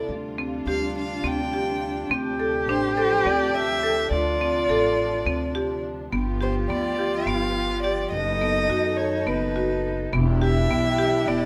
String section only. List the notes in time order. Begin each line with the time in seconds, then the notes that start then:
Already playing: C3
0.10 G3 F4
2.11 F3 D4
6.13 F3 B3 G4
8.13 D#3 A4
10.12 E3 D4 G4